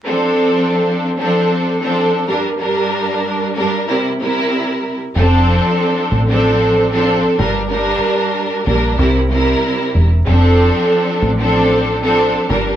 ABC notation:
X:1
M:4/4
L:1/16
Q:"Swing 16ths" 1/4=94
K:F
V:1 name="String section"
[F,CDA]6 z [F,CDA]4 [F,CDA]3 [G,,G,DB] z | [G,,G,DB]6 [G,,G,DB]2 [C,G,EB] z [C,G,EB]4- [C,G,EB] z | [F,CDA]6 z [F,CDA]4 [F,CDA]3 [G,,G,DB] z | [G,,G,DB]6 [G,,G,DB]2 [C,G,EB] z [C,G,EB]4- [C,G,EB] z |
[F,CDA]6 z [F,CDA]4 [F,CDA]3 [G,,G,DB] z |]
V:2 name="Fingered electric bass" clef=bass
z16 | z16 | F,,,3 z3 A,,,6- A,,, z G,,,2- | G,,,2 z4 B,,,2 C,,4 z2 E,,,2 |
F,,,3 z3 A,,,6- A,,, z G,,,2 |]